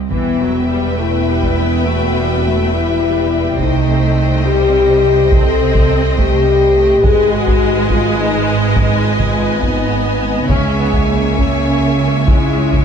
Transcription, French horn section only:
0.11 0.95 B3 medium
1.00 1.85 E4 medium
1.85 2.72 F#4 medium
2.72 3.57 E4 medium
3.60 4.44 D#4 medium
4.45 5.32 G4 medium
5.33 6.18 A4 medium
6.18 7.02 G4 medium
7.04 7.33 G#4 medium
7.32 7.89 F#4 medium
7.89 8.17 F4 medium
8.18 8.58 D#4 medium
8.75 9.04 D#4 medium
9.03 9.60 F4 medium
9.62 9.90 D#4 medium
9.92 10.48 D#4 medium
10.49 11.36 G#3 medium
11.37 12.27 C#4 medium
12.27 12.85 E4 medium

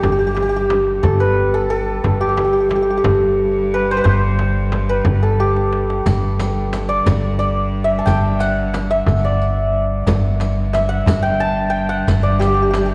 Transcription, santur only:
0.00 1.03 A4 medium
0.05 0.12 G4 soft
0.12 0.18 G4 medium
0.19 0.26 G4 medium
0.27 0.34 G4 medium
0.35 0.42 G4 medium
0.42 0.49 G4 medium
0.49 0.56 G4 medium
0.56 2.21 G4 medium
1.03 1.54 A4 medium
1.20 3.74 B4 medium
1.54 1.70 A4 medium
1.70 4.63 A4 medium
2.21 2.29 G4 medium
2.29 2.37 G4 medium
2.37 2.44 G4 medium
2.45 2.53 G4 soft
2.53 2.60 G4 medium
2.60 2.69 G4 soft
2.69 2.75 G4 medium
2.76 2.82 G4 soft
2.82 2.90 G4 medium
2.90 2.97 G4 medium
2.97 5.39 G4 medium
3.74 3.97 B4 medium
3.91 4.03 C5 loud
3.97 4.10 B4 medium
4.04 4.95 C5 loud
4.89 7.63 B4 medium
5.23 8.15 A4 medium
5.40 8.47 G4 medium
6.89 7.38 D5 medium
7.39 9.24 D5 medium
7.84 8.90 E5 medium
7.99 9.91 A5 medium
8.06 8.47 G5 medium
8.41 10.55 F#5 loud
8.91 10.73 E5 medium
9.25 11.71 D5 medium
10.74 12.94 E5 medium
10.89 11.29 F#5 medium
11.23 11.69 G5 loud
11.40 12.94 A5 loud
11.70 11.95 G5 medium
11.89 12.45 F#5 medium
12.23 12.94 D5 medium
12.39 12.47 G4 medium
12.47 12.54 G4 medium
12.54 12.62 G4 medium
12.62 12.70 G4 medium
12.71 12.77 G4 medium
12.78 12.85 G4 soft
12.86 12.94 G4 medium

